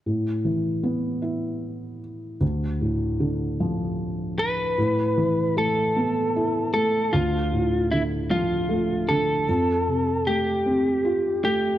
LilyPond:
<<
  \new Staff \with { instrumentName = "Lead electric guitar" } { \time 6/8 \key a \minor \tempo 4. = 51 r2. | r2 r8 b'8~ | b'4 a'4. a'8 | f'4 e'8 f'4 a'8~ |
a'4 g'4. g'8 | }
  \new Staff \with { instrumentName = "Felt piano" } { \clef bass \time 6/8 \key a \minor a,8 e8 b8 e'4. | d,8 a,8 d8 f4. | a,8 e8 a8 b8 e'8 a8 | d,8 a,8 d8 f8 a8 d8 |
f,8 c8 a8 c'8 f'8 a8 | }
>>